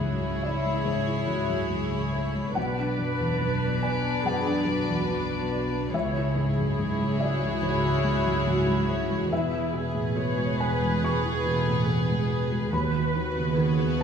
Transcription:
0.00 0.83 C#2 soft
0.00 2.56 C#2 soft
0.00 1.49 F#2 soft
0.00 0.85 G#2 soft
0.00 2.56 C#3 soft
0.00 1.06 E4 soft
0.00 2.51 E4 soft
0.00 0.44 F#4 soft
0.00 2.51 G#4 soft
0.00 2.53 C#5 soft
0.00 0.40 E5 medium
0.21 0.56 G#3 soft
0.42 0.87 E4 soft
0.42 0.83 D5 soft
0.42 0.77 E5 soft
0.63 0.98 G#3 soft
0.85 1.20 G#2 soft
0.85 1.28 G#4 soft
0.85 2.09 C#5 soft
1.06 1.41 E4 soft
1.27 1.62 G#2 soft
1.27 1.72 F#4 soft
1.49 1.71 F#2 soft
1.70 2.05 G#2 soft
1.70 2.14 G#4 soft
1.92 2.26 G#3 soft
2.13 2.56 A3 soft
2.13 2.47 C#5 soft
2.34 2.56 G#3 soft
2.55 5.90 B1 soft
2.55 4.21 B1 soft
2.55 5.89 B2 soft
2.55 5.90 D4 soft
2.55 4.21 B4 medium
2.55 5.90 B4 soft
2.55 5.90 D5 soft
2.55 3.79 F#5 medium
2.78 3.12 D4 soft
2.99 3.33 F#2 soft
3.19 3.41 E2 soft
3.41 3.75 F#2 soft
3.62 3.96 B3 soft
3.83 4.17 D5 soft
3.83 4.22 G#5 medium
4.04 4.38 B3 soft
4.24 4.59 F#2 soft
4.24 4.66 G#4 medium
4.24 5.90 F#5 medium
4.45 4.79 D4 soft
4.66 5.00 F#2 soft
4.66 5.93 F#4 soft
4.87 5.09 E2 soft
5.09 5.43 F#2 soft
5.30 5.64 B3 soft
5.51 5.85 D5 soft
5.73 5.94 B3 soft
5.92 7.58 C#2 soft
5.92 9.28 C#2 soft
5.92 9.27 C#3 soft
5.92 9.27 E4 medium
5.92 9.27 G#4 medium
5.92 6.34 C#5 medium
5.92 9.28 C#5 medium
5.92 7.16 E5 medium
6.15 6.48 E4 soft
6.35 6.69 G#2 soft
6.35 6.76 G#4 soft
6.57 6.78 F#2 soft
6.77 7.12 G#2 soft
6.77 7.20 G#4 soft
6.99 7.33 G#3 soft
7.19 9.31 F#4 medium
7.19 7.59 D5 medium
7.19 7.54 E5 soft
7.42 7.75 G#3 soft
7.63 7.96 G#2 soft
7.63 8.85 C#5 medium
7.85 8.18 E4 soft
8.04 8.38 G#2 soft
8.26 8.47 F#2 soft
8.47 8.81 G#2 soft
8.67 9.02 G#3 soft
8.89 9.23 C#5 soft
9.09 9.31 G#3 soft
9.31 12.73 E1 medium
9.31 10.99 E2 medium
9.31 12.73 E2 soft
9.31 12.69 B3 medium
9.31 9.73 E4 medium
9.31 12.69 G#4 medium
9.31 12.68 B4 medium
9.31 10.56 E5 medium
9.52 9.86 E4 soft
9.73 10.08 B2 soft
9.73 10.16 G#4 medium
9.94 10.16 A2 soft
10.16 10.50 B2 soft
10.16 10.60 C#5 medium
10.37 10.72 G#3 soft
10.60 10.94 B4 soft
10.60 11.03 B4 soft
10.60 11.00 G#5 medium
10.81 11.15 G#3 soft
11.03 11.37 B2 soft
11.03 11.46 G#4 medium
11.03 12.69 C#6 medium
11.23 11.58 E4 soft
11.45 11.79 B2 soft
11.45 11.89 A3 medium
11.67 11.88 A2 soft
11.88 12.21 B2 soft
11.88 12.72 G#4 medium
12.09 12.43 G#3 soft
12.30 12.64 B4 soft
12.51 12.72 G#3 soft
12.72 14.03 D#2 medium
12.72 14.03 D#2 soft
12.72 14.03 D#2 medium
12.72 14.03 B3 medium
12.72 14.03 F#4 medium
12.72 14.03 B4 medium
12.72 13.55 B4 medium
12.72 13.95 B5 medium
12.94 13.28 F#4 soft
13.16 13.49 D#3 soft
13.36 13.57 C#3 soft
13.56 13.91 D#3 soft
13.56 13.99 G#4 medium
13.78 14.03 B3 soft
13.99 14.03 F#4 soft
13.99 14.03 B4 soft

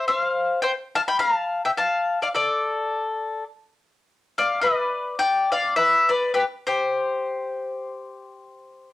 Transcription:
0.08 0.60 C5 medium
0.08 0.62 F5 medium
0.62 0.72 C5 medium
0.62 0.71 G5 medium
0.95 1.01 F5 medium
0.95 1.00 A5 loud
1.08 1.19 G5 medium
1.08 1.19 B5 loud
1.19 1.61 F5 medium
1.19 1.36 A#5 medium
1.36 1.65 A5 medium
1.65 1.70 E5 medium
1.65 1.70 G5 medium
1.77 2.18 F5 medium
1.77 2.23 A5 medium
2.22 2.27 D5 medium
2.22 2.28 F5 medium
2.35 3.43 A4 medium
2.35 3.44 D5 medium
4.38 4.60 D5 medium
4.38 4.61 F5 medium
4.61 5.14 B4 medium
4.61 5.19 D5 medium
5.19 5.49 D5 medium
5.19 5.52 G5 loud
5.52 5.73 D5 medium
5.52 5.75 F5 medium
5.76 6.06 B4 medium
5.76 6.09 E5 loud
6.09 6.30 B4 medium
6.09 6.32 D5 medium
6.34 6.43 G4 medium
6.34 6.42 B4 medium
6.67 8.89 G4 medium
6.67 8.88 C5 medium

